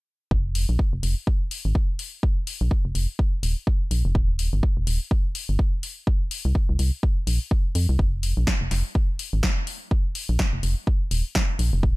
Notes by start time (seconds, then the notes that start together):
0.31 F1, kick
0.55 open hi-hat
0.69 A#1
0.79 kick
0.93 F1
1.03 F1, open hi-hat
1.27 kick
1.51 open hi-hat
1.65 G#1
1.75 kick
1.99 open hi-hat
2.23 kick
2.47 open hi-hat
2.61 A#1
2.71 kick
2.85 F1
2.95 F1, open hi-hat
3.19 kick
3.43 D#1, open hi-hat
3.67 kick
3.91 A#1, open hi-hat
4.05 F1
4.15 D#1, kick
4.39 open hi-hat
4.53 G1
4.63 kick
4.77 D#1
4.87 D#1, open hi-hat
5.11 kick
5.35 open hi-hat
5.49 G1
5.59 kick
5.83 open hi-hat
6.07 kick
6.31 open hi-hat
6.45 C2
6.55 kick
6.69 C2
6.79 C2, open hi-hat
7.03 kick
7.27 A#1, open hi-hat
7.51 kick
7.75 F2, open hi-hat
7.89 C2
7.99 F1, kick
8.23 open hi-hat
8.37 A#1
8.47 kick, snare
8.61 F1
8.71 F1, snare, open hi-hat
8.95 kick
9.19 open hi-hat
9.33 G#1
9.43 kick, snare
9.67 open hi-hat
9.91 kick
10.15 open hi-hat
10.29 A#1
10.39 kick, snare
10.53 F1
10.63 F1, open hi-hat
10.87 kick
11.11 D#1, open hi-hat
11.35 kick, snare
11.59 A#1, open hi-hat
11.73 F1
11.83 D#1, kick